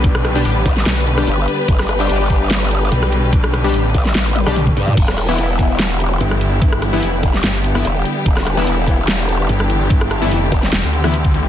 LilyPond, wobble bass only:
\new Staff \with { instrumentName = "Wobble bass" } { \clef bass \time 4/4 \key e \minor \tempo 4 = 146 r4. a,,8 r4 g,,8 r8 | g,,4 g,,2 r4 | r4. a,,8 a,,8 r4 g,8 | e,,4 e,,2 r4 |
r4. f,,8 r4 e,,8 r8 | e,,4 e,,2 r4 | r4. f,,8 r2 | }